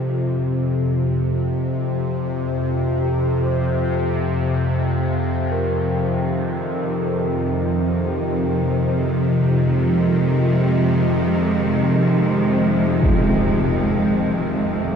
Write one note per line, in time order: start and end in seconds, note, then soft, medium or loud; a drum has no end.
0.00 14.96 F2 medium
0.00 14.96 C3 medium
0.00 5.53 C5 medium
5.50 14.96 F2 medium
5.50 14.96 A#4 medium
6.04 14.96 D#3 medium
9.46 14.96 G#3 medium
10.05 14.96 C4 medium
13.03 impact medium